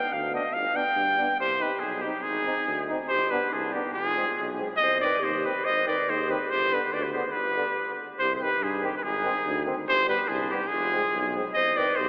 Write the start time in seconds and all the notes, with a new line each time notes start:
Already playing: G5
0.12 D2 F5
0.31 B3 D4 D#5
0.53 G1 F5
0.74 B3 D4 G5
0.96 G2
1.17 B3 D4
1.40 C2 G4 C5
1.59 C4 D#4 G4 B4
1.79 B1 D#4 G#4
2.02 C4 D#4 G4
2.23 G#1 G#4
2.28 D#4
2.45 C4 D#4
2.67 D2
2.89 C4 D#4
3.08 G1 G4 C5
3.30 B3 D4 G4 B4
3.51 C2 D4 G#4
3.73 B3 D4 D#4 G4
3.93 F1 F4 G#4
4.16 G#3 C4
4.38 B1
4.59 G#3 C4
4.77 C2 D#5
4.83 C5
5.01 D#3 C4 B4 D5
5.20 D#2 G4
5.24 C5
5.43 D#3 C4 G4 B4
5.64 G#1 C5 D#5
5.86 D#3 C4 B4 D5
6.09 D#2 G#4 C5
6.28 D#3 C4 G4 B4
6.50 G1 G4 C5
6.71 D3 B3 G4 B4
6.93 D2 B4 D5
7.02 G4 B4
7.13 D3 B3 G#4 C5
7.32 G1 B4
7.36 G4
7.56 D3 B3
8.19 C2 G4 C5
8.34 G#4 C5
8.40 D#3 C4 G4 B4
8.60 G2 G#4
8.64 D#4
8.82 D#3 C4 D#4 G4
8.97 G4 B4
9.03 G#1 D#4 G#4
9.23 D#3 C4
9.45 D2
9.64 D#3 C4
9.87 G1 G4 C5
10.05 G3 B3 G4 B4
10.28 C2 D4 G#4
10.51 G3 B3 D#4 G4
10.68 F1 G#4
10.72 F4
10.93 G#3 C4
11.14 B1
11.35 G#3 C4
11.53 C2 C5 D#5
11.77 D#3 C4 B4 D5
11.96 B1 G4 C5